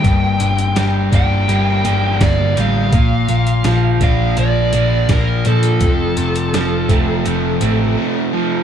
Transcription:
<<
  \new Staff \with { instrumentName = "Lead electric guitar" } { \time 4/4 \key bes \major \tempo 4 = 83 g''4. g''4. d''8 f''8~ | f''4. f''8 d''4 bes'8 a'8~ | a'2.~ a'8 r8 | }
  \new Staff \with { instrumentName = "Overdriven electric guitar" } { \clef bass \time 4/4 \key bes \major g,8 d8 g8 d'8 bes8 d'8 bes8 g8 | bes,8 bes,8 f8 d'8 bes8 d'8 bes8 f8 | f,8 c8 f8 c'8 a8 c'8 a8 f8 | }
  \new Staff \with { instrumentName = "Overdriven electric guitar" } { \clef bass \time 4/4 \key bes \major g,4 g8 bes8 g8 bes8 d8 g8 | bes,4 f8 bes8 f8 bes8 bes,8 f8 | f,4 f8 a8 f8 a8 c8 f8 | }
  \new Staff \with { instrumentName = "Picked electric bass" } { \clef bass \time 4/4 \key bes \major g,,8 g,,8 g,,8 g,,8 g,,8 g,,8 g,,8 a,,8 | bes,,8 bes,,8 bes,,8 bes,,8 bes,,8 bes,,8 bes,,8 bes,8 | f,,8 f,,8 f,,8 f,,8 f,,8 a,,8 r4 | }
  \new DrumStaff \with { instrumentName = "Drums" } \drummode { \time 4/4 <hh bd>8 hh16 hh16 <hh sn>8 <hh bd>8 hh8 hh8 <hh bd sn>8 hh8 | <hh bd>8 hh16 hh16 <hh sn>8 <hh bd>8 hh8 hh8 <hh bd sn>8 hh16 hh16 | <hh bd>8 hh16 hh16 <hh sn>8 <hh bd>8 hh8 hh8 r4 | }
>>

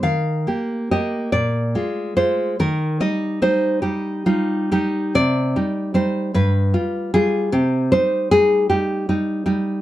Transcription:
\new Staff \with { instrumentName = "Nylon-string guitar" } { \time 6/8 \key ees \major \tempo 4. = 49 << { f''4 ees''8 d''4 c''8 | bes'8 ees''8 c''8 g'8 f'8 g'8 | d''4 c''8 b'4 aes'8 | g'8 c''8 aes'8 g'8 r4 | } \\ { ees8 <bes g'>8 <bes g'>8 bes,8 <aes f'>8 <aes f'>8 | ees8 <g ees'>8 <g ees'>8 <g ees'>8 <g ees'>8 <g ees'>8 | c8 <g ees'>8 <g ees'>8 g,8 <g f'>8 <g f'>8 | c8 <g ees'>8 <g ees'>8 <g ees'>8 <g ees'>8 <g ees'>8 | } >> }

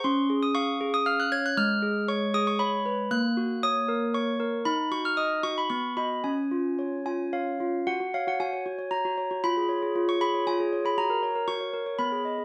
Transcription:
\new Staff \with { instrumentName = "Handbells" } { \time 3/4 \key des \major \tempo 4 = 116 << { c'''8. ees'''16 des'''8. ees'''16 f'''16 ges'''16 aes'''16 ges'''16 | \key fis \major eis'''4 cis'''8 dis'''16 cis'''16 b''4 | fis'''4 dis'''4 cis'''4 | b''8 cis'''16 eis'''16 dis'''8 cis'''16 b''16 cis'''8 b''8 |
gis''4. gis''8 eis''4 | fis''8 eis''16 fis''16 gis''4 ais''4 | b''4~ b''16 cis'''16 b''8 gis''8. b''16 | ais''4 cis'''4 b''4 | } \\ { des'8 aes'8 f''8 aes'8 f''8 des''8 | gis8 gis'8 cis''8 gis'8 cis''8 b'8 | ais8 fis'8 cis''8 ais'8 cis''8 ais'8 | dis'8 fis'8 dis''8 fis'8 b8 <fis' dis''>8 |
cis'8 eis'8 cis''8 eis'8 cis''8 eis'8 | fis'16 fis'16 cis''16 fis'16 fis'16 cis''16 fis'16 cis''16 fis'16 fis'16 cis''16 fis'16 | eis'16 gis'16 cis''16 gis'16 eis'16 cis''16 gis'16 cis''16 eis'16 gis'16 cis''16 gis'16 | fis'16 ais'16 cis''16 ais'16 fis'16 cis''16 ais'16 cis''16 b16 gis'16 dis''16 gis'16 | } >> }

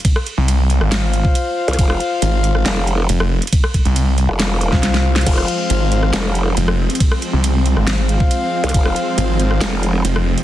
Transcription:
<<
  \new Staff \with { instrumentName = "Brass ensemble" } { \time 4/4 \key f \minor \tempo 4 = 138 r4. r16 <f' c'' f''>2~ <f' c'' f''>16~ | <f' c'' f''>2~ <f' c'' f''>16 <f' c'' f''>16 r4. | r4. r16 <f' c'' f''>2~ <f' c'' f''>16~ | <f' c'' f''>2~ <f' c'' f''>16 <f' c'' f''>16 r4. |
r4. r16 <f' c'' f''>2~ <f' c'' f''>16~ | <f' c'' f''>2~ <f' c'' f''>16 <f' c'' f''>16 r4. | }
  \new Staff \with { instrumentName = "Supersaw synth" } { \clef bass \time 4/4 \key f \minor r1 | r1 | r1 | <f aes c'>1~ |
<f aes c'>1~ | <f aes c'>1 | }
  \new Staff \with { instrumentName = "Detuned saw bass" } { \clef bass \time 4/4 \key f \minor r8. c,4 aes,,4 r4 r16 | r4 aes,,4 r4 f,,8. r16 | r8. c,4 r4 c,4~ c,16 | r4 aes,,4 r4 f,,8. r16 |
r8. c,4 aes,,4 r4 r16 | r4 aes,,4 r4 f,,8. r16 | }
  \new Staff \with { instrumentName = "Wobble bass" } { \clef bass \time 4/4 \key f \minor r2. r8. c,16 | f,,8 r4. f,,4 r4 | r4. r16 f,,4 r4 r16 | f,,8 r4. f,,4 r4 |
r2. r8. c,16 | f,,8 r4. f,,4 r4 | }
  \new DrumStaff \with { instrumentName = "Drums" } \drummode { \time 4/4 <hh bd cymr>16 ss16 hh8 <hh cymr>8 hh16 ss16 <hh cymr sn>8 hh16 bd16 <hh cymr>8. hh32 hh32 | <hh bd cymr>16 ss16 hh8 <hh cymr>8 hh16 ss16 <hh cymr sn>8 hh8 <hh cymr>16 ss8 hh32 hh32 | <hh bd cymr>16 ss16 <hh bd>16 hh16 <hh cymr>8 hh16 ss16 <hh cymr sn>8 hh16 <bd sn>16 <hh cymr sn>16 <hh sn>8 <hh sn>32 hh32 | <cymc hh bd cymr>16 ss16 hh8 <hh cymr>8 hh16 ss16 <hh cymr sn>8 hh8 <hh cymr>16 ss8 hh32 hh32 |
<hh bd cymr>16 ss16 hh8 <hh cymr>8 hh16 ss16 <hh cymr sn>8 hh16 bd16 <hh cymr>8. hh32 hh32 | <hh bd cymr>16 ss16 hh8 <hh cymr>8 hh16 ss16 <hh cymr sn>8 hh8 <hh cymr>16 ss8 hh16 | }
>>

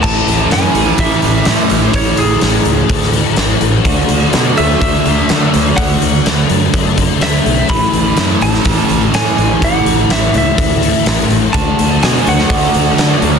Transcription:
<<
  \new Staff \with { instrumentName = "Clean electric guitar" } { \time 4/4 \key a \major \tempo 4 = 125 a''4 gis''4 e''2 | cis''8 gis'2 r4. | r4. e''8 e''2 | fis''4. r4. e''4 |
b''4. a''4. gis''4 | fis''4 e''8 e''2 r8 | a''4 gis''8 fis''2~ fis''8 | }
  \new Staff \with { instrumentName = "Distorted electric guitar" } { \time 4/4 \key a \major <a, e a>4 <a, e a>4 <a, e a>8 <e a>8 <a, e a>4 | <a, e a>4 <a, e a>4 <a, e a>8 <e a>8 <a, e a>4 | <d a d'>4 <d a d'>4 <d a d'>8 <a d'>8 <d a d'>4 | <d a d'>4 <d a d'>4 <d a d'>8 <a d'>8 <d a d'>4 |
<a, e a>4 <a, e a>4 <a, e a>8 <e a>8 <a, e a>4 | <a, e a>4 <a, e a>4 <a, e a>8 <e a>8 <a, e a>4 | <d a d'>4 <d a d'>4 <d a d'>8 <a d'>8 <d a d'>4 | }
  \new Staff \with { instrumentName = "Overdriven electric guitar" } { \time 4/4 \key a \major <a, e a cis' e'>1~ | <a, e a cis' e'>1 | <d a d' fis'>1~ | <d a d' fis'>1 |
<a, e a cis' e'>1~ | <a, e a cis' e'>1 | <d a d' fis'>1 | }
  \new Staff \with { instrumentName = "Fingered electric bass" } { \clef bass \time 4/4 \key a \major a,,8 a,,8 fis,8 a,,8 a,,8 a,,8 a,8 a,,8 | a,,8 a,,8 a,,8 cis,8 d,4 a,,8 a,,8 | d,8 d,8 b,8 d,8 d,8 d,8 d8 d,8 | d,8 d,8 d,8 fis,8 fis,4 d,8 b,,8 |
a,,8 a,,8 fis,8 a,,8 a,,8 a,,8 a,8 a,,8 | a,,8 a,,8 a,,8 cis,8 d,4 a,,8 a,,8 | d,8 d,8 b,8 d,8 d,8 d,8 d8 d,8 | }
  \new DrumStaff \with { instrumentName = "Drums" } \drummode { \time 4/4 <cymc bd>8 hho8 <hho sn>8 hho8 <hho bd>8 hho8 <hho sn>8 hho8 | <hho bd>8 hho8 <hho sn>8 hho8 <hho bd>16 sn16 hho8 <hho sn>8 hho8 | <hho bd>8 hho8 <hho sn>8 hho8 <hho bd>8 hho8 <hho sn>8 hho8 | <hho bd>8 hho8 <hho sn>8 hho8 <hho bd>8 <hho bd>8 <hho sn>8 hho8 |
<hho bd>8 hho8 <hho sn>8 hho16 sn16 <hho bd>8 hho8 <hho sn>8 hho8 | <hho bd>8 hho8 <hho sn>8 hho8 <hho bd>8 hho8 <hho sn>8 hho8 | <hho bd>8 hho8 <hho sn>8 hho16 sn16 <hho bd>8 hho8 <hho sn>8 hho8 | }
>>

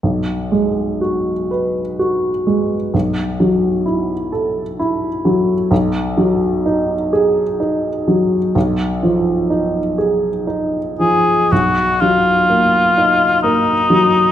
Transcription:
<<
  \new Staff \with { instrumentName = "Cor anglais" } { \time 3/4 \key b \lydian \tempo 4 = 63 r2. | r2. | r2. | r2 r8 gis'8 |
fis'8 eis'4. dis'4 | }
  \new Staff \with { instrumentName = "Grand piano" } { \time 3/4 \key b \lydian b,,8 gis8 fis'8 b'8 fis'8 gis8 | b,,8 fis8 e'8 a'8 e'8 fis8 | b,,8 fis8 dis'8 gis'8 dis'8 fis8 | b,,8 eis8 dis'8 gis'8 dis'8 eis8 |
b,,8 fis8 ais8 dis'8 ais8 fis8 | }
>>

